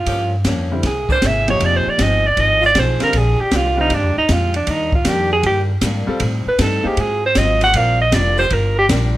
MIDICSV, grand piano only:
0, 0, Header, 1, 2, 480
1, 0, Start_track
1, 0, Tempo, 384123
1, 86, Time_signature, 4, 2, 24, 8
1, 11463, End_track
2, 0, Start_track
2, 0, Title_t, "Grand piano"
2, 0, Program_c, 0, 0
2, 897, Note_on_c, 0, 50, 65
2, 897, Note_on_c, 0, 55, 56
2, 903, Note_on_c, 0, 60, 56
2, 904, Note_on_c, 0, 64, 66
2, 1037, Note_off_c, 0, 50, 0
2, 1037, Note_off_c, 0, 55, 0
2, 1040, Note_off_c, 0, 60, 0
2, 1040, Note_off_c, 0, 64, 0
2, 1846, Note_on_c, 0, 53, 61
2, 1849, Note_on_c, 0, 63, 58
2, 1851, Note_on_c, 0, 58, 55
2, 1854, Note_on_c, 0, 67, 71
2, 2454, Note_off_c, 0, 53, 0
2, 2456, Note_off_c, 0, 63, 0
2, 2457, Note_off_c, 0, 58, 0
2, 2458, Note_off_c, 0, 67, 0
2, 3752, Note_on_c, 0, 55, 64
2, 3756, Note_on_c, 0, 50, 69
2, 3756, Note_on_c, 0, 60, 68
2, 3764, Note_on_c, 0, 65, 76
2, 3903, Note_off_c, 0, 55, 0
2, 3906, Note_off_c, 0, 50, 0
2, 3906, Note_off_c, 0, 60, 0
2, 3910, Note_off_c, 0, 65, 0
2, 4713, Note_on_c, 0, 50, 73
2, 4713, Note_on_c, 0, 60, 64
2, 4713, Note_on_c, 0, 65, 82
2, 4719, Note_on_c, 0, 55, 64
2, 4864, Note_off_c, 0, 50, 0
2, 4864, Note_off_c, 0, 60, 0
2, 4864, Note_off_c, 0, 65, 0
2, 4867, Note_off_c, 0, 55, 0
2, 7583, Note_on_c, 0, 65, 66
2, 7585, Note_on_c, 0, 55, 71
2, 7586, Note_on_c, 0, 60, 63
2, 7595, Note_on_c, 0, 69, 83
2, 7739, Note_off_c, 0, 65, 0
2, 7740, Note_off_c, 0, 55, 0
2, 7740, Note_off_c, 0, 60, 0
2, 7745, Note_off_c, 0, 69, 0
2, 8538, Note_on_c, 0, 58, 64
2, 8545, Note_on_c, 0, 63, 61
2, 8546, Note_on_c, 0, 68, 59
2, 8556, Note_on_c, 0, 72, 62
2, 8696, Note_off_c, 0, 58, 0
2, 8700, Note_off_c, 0, 63, 0
2, 8700, Note_off_c, 0, 68, 0
2, 8705, Note_off_c, 0, 72, 0
2, 9682, Note_on_c, 0, 60, 59
2, 9687, Note_on_c, 0, 65, 51
2, 9693, Note_on_c, 0, 70, 53
2, 9696, Note_on_c, 0, 74, 67
2, 9970, Note_off_c, 0, 60, 0
2, 9972, Note_off_c, 0, 65, 0
2, 9975, Note_off_c, 0, 70, 0
2, 9977, Note_off_c, 0, 74, 0
2, 11463, End_track
0, 0, End_of_file